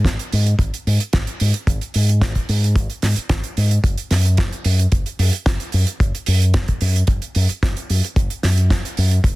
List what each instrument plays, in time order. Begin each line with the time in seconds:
0.05 fingered electric bass G#1, kick, snare, closed hi-hat
0.19 closed hi-hat
0.32 fingered electric bass G#2, open hi-hat
0.47 closed hi-hat
0.59 fingered electric bass G#1, kick, closed hi-hat
0.74 closed hi-hat
0.87 fingered electric bass G#2, open hi-hat
1.00 closed hi-hat
1.13 fingered electric bass G#1, kick, snare, closed hi-hat
1.27 closed hi-hat
1.40 fingered electric bass G#2, open hi-hat
1.54 closed hi-hat
1.67 fingered electric bass G#1, kick, closed hi-hat
1.81 closed hi-hat
1.94 fingered electric bass G#2, open hi-hat
2.09 closed hi-hat
2.21 fingered electric bass G#1, kick, snare, closed hi-hat
2.35 kick, closed hi-hat
2.49 fingered electric bass G#2, open hi-hat
2.64 closed hi-hat
2.76 fingered electric bass G#1, kick, closed hi-hat
2.90 closed hi-hat
3.02 fingered electric bass G#2, snare, open hi-hat
3.16 muted fingered electric bass stroke, closed hi-hat
3.29 fingered electric bass G#1, kick, snare, closed hi-hat
3.44 closed hi-hat
3.57 fingered electric bass G#2, open hi-hat
3.71 closed hi-hat
3.84 fingered electric bass F#1, kick, closed hi-hat
3.98 closed hi-hat
4.11 fingered electric bass F#2, snare, open hi-hat
4.25 closed hi-hat
4.37 fingered electric bass F#1, kick, snare, closed hi-hat
4.52 closed hi-hat
4.64 fingered electric bass F#2, open hi-hat
4.79 closed hi-hat
4.92 fingered electric bass F#1, kick, closed hi-hat
5.06 closed hi-hat
5.19 fingered electric bass F#2, open hi-hat
5.33 closed hi-hat
5.46 fingered electric bass F#1, kick, snare, closed hi-hat
5.60 closed hi-hat
5.72 fingered electric bass F#2, open hi-hat
5.87 closed hi-hat
6.00 fingered electric bass F#1, kick, closed hi-hat
6.15 closed hi-hat
6.26 fingered electric bass F#2, open hi-hat
6.42 closed hi-hat
6.54 fingered electric bass F#1, kick, snare, closed hi-hat
6.68 kick, closed hi-hat
6.81 fingered electric bass F#2, open hi-hat
6.96 closed hi-hat
7.07 fingered electric bass F#1, kick, closed hi-hat
7.22 closed hi-hat
7.35 fingered electric bass F#2, open hi-hat
7.49 muted fingered electric bass stroke, closed hi-hat
7.63 fingered electric bass F#1, kick, snare, closed hi-hat
7.77 closed hi-hat
7.90 fingered electric bass F#2, open hi-hat
8.04 closed hi-hat
8.16 fingered electric bass F#1, kick, closed hi-hat
8.30 closed hi-hat
8.43 fingered electric bass F#2, snare, open hi-hat
8.58 closed hi-hat
8.70 fingered electric bass F#1, kick, snare, closed hi-hat
8.85 closed hi-hat
8.97 fingered electric bass F#2, open hi-hat
9.11 closed hi-hat
9.24 fingered electric bass F#1, kick, closed hi-hat